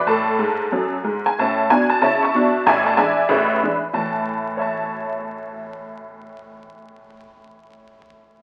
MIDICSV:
0, 0, Header, 1, 2, 480
1, 0, Start_track
1, 0, Key_signature, 3, "major"
1, 0, Tempo, 321716
1, 109, Time_signature, 4, 2, 24, 8
1, 12563, End_track
2, 0, Start_track
2, 0, Title_t, "Honky-tonk piano"
2, 0, Program_c, 0, 3
2, 97, Note_on_c, 0, 45, 79
2, 106, Note_on_c, 0, 81, 77
2, 121, Note_on_c, 0, 69, 56
2, 511, Note_off_c, 0, 45, 0
2, 574, Note_on_c, 0, 44, 69
2, 575, Note_on_c, 0, 56, 69
2, 941, Note_off_c, 0, 44, 0
2, 941, Note_off_c, 0, 56, 0
2, 1069, Note_on_c, 0, 42, 61
2, 1079, Note_on_c, 0, 54, 67
2, 1333, Note_off_c, 0, 81, 0
2, 1430, Note_off_c, 0, 42, 0
2, 1437, Note_off_c, 0, 54, 0
2, 1498, Note_off_c, 0, 69, 0
2, 1550, Note_on_c, 0, 44, 61
2, 1555, Note_on_c, 0, 56, 57
2, 1880, Note_on_c, 0, 80, 67
2, 1911, Note_off_c, 0, 44, 0
2, 1914, Note_off_c, 0, 56, 0
2, 2024, Note_off_c, 0, 80, 0
2, 2067, Note_on_c, 0, 45, 65
2, 2080, Note_on_c, 0, 81, 74
2, 2087, Note_on_c, 0, 73, 48
2, 2093, Note_on_c, 0, 61, 58
2, 2100, Note_on_c, 0, 76, 52
2, 2437, Note_off_c, 0, 45, 0
2, 2453, Note_off_c, 0, 61, 0
2, 2468, Note_off_c, 0, 81, 0
2, 2509, Note_off_c, 0, 73, 0
2, 2516, Note_off_c, 0, 76, 0
2, 2540, Note_on_c, 0, 80, 93
2, 2542, Note_on_c, 0, 47, 67
2, 2555, Note_on_c, 0, 62, 68
2, 2778, Note_off_c, 0, 80, 0
2, 2828, Note_on_c, 0, 81, 81
2, 2915, Note_off_c, 0, 47, 0
2, 2923, Note_off_c, 0, 62, 0
2, 2978, Note_off_c, 0, 81, 0
2, 3000, Note_on_c, 0, 49, 67
2, 3011, Note_on_c, 0, 81, 86
2, 3028, Note_on_c, 0, 76, 61
2, 3030, Note_on_c, 0, 73, 66
2, 3031, Note_on_c, 0, 64, 55
2, 3253, Note_off_c, 0, 81, 0
2, 3284, Note_off_c, 0, 76, 0
2, 3285, Note_off_c, 0, 73, 0
2, 3322, Note_on_c, 0, 85, 77
2, 3339, Note_on_c, 0, 76, 64
2, 3350, Note_on_c, 0, 81, 66
2, 3382, Note_off_c, 0, 49, 0
2, 3400, Note_off_c, 0, 64, 0
2, 3497, Note_on_c, 0, 47, 63
2, 3520, Note_on_c, 0, 62, 63
2, 3872, Note_off_c, 0, 47, 0
2, 3875, Note_off_c, 0, 85, 0
2, 3886, Note_off_c, 0, 62, 0
2, 3936, Note_off_c, 0, 76, 0
2, 3942, Note_off_c, 0, 81, 0
2, 3972, Note_on_c, 0, 45, 79
2, 3976, Note_on_c, 0, 33, 67
2, 3979, Note_on_c, 0, 80, 93
2, 4000, Note_on_c, 0, 74, 68
2, 4001, Note_on_c, 0, 76, 79
2, 4218, Note_off_c, 0, 80, 0
2, 4251, Note_off_c, 0, 74, 0
2, 4251, Note_off_c, 0, 76, 0
2, 4267, Note_on_c, 0, 81, 76
2, 4373, Note_off_c, 0, 45, 0
2, 4375, Note_off_c, 0, 33, 0
2, 4418, Note_off_c, 0, 81, 0
2, 4433, Note_on_c, 0, 52, 50
2, 4433, Note_on_c, 0, 56, 57
2, 4434, Note_on_c, 0, 80, 81
2, 4438, Note_on_c, 0, 62, 56
2, 4448, Note_on_c, 0, 74, 66
2, 4449, Note_on_c, 0, 76, 80
2, 4698, Note_off_c, 0, 52, 0
2, 4698, Note_off_c, 0, 56, 0
2, 4701, Note_off_c, 0, 62, 0
2, 4842, Note_off_c, 0, 80, 0
2, 4887, Note_off_c, 0, 76, 0
2, 4889, Note_off_c, 0, 74, 0
2, 4908, Note_on_c, 0, 33, 78
2, 4909, Note_on_c, 0, 76, 75
2, 4910, Note_on_c, 0, 45, 70
2, 4929, Note_on_c, 0, 71, 60
2, 4933, Note_on_c, 0, 68, 63
2, 5319, Note_off_c, 0, 33, 0
2, 5321, Note_off_c, 0, 45, 0
2, 5406, Note_on_c, 0, 52, 44
2, 5410, Note_on_c, 0, 56, 52
2, 5411, Note_on_c, 0, 62, 48
2, 5569, Note_off_c, 0, 76, 0
2, 5641, Note_off_c, 0, 71, 0
2, 5643, Note_off_c, 0, 68, 0
2, 5667, Note_off_c, 0, 52, 0
2, 5670, Note_off_c, 0, 56, 0
2, 5671, Note_off_c, 0, 62, 0
2, 5868, Note_on_c, 0, 52, 54
2, 5871, Note_on_c, 0, 45, 53
2, 5879, Note_on_c, 0, 81, 58
2, 6129, Control_c, 0, 64, 127
2, 6821, Note_on_c, 0, 73, 42
2, 6848, Note_on_c, 0, 76, 39
2, 6862, Note_off_c, 0, 81, 0
2, 6884, Note_on_c, 0, 81, 46
2, 10799, Note_off_c, 0, 52, 0
2, 10802, Note_off_c, 0, 45, 0
2, 11751, Note_off_c, 0, 73, 0
2, 11778, Note_off_c, 0, 76, 0
2, 11815, Note_off_c, 0, 81, 0
2, 12563, End_track
0, 0, End_of_file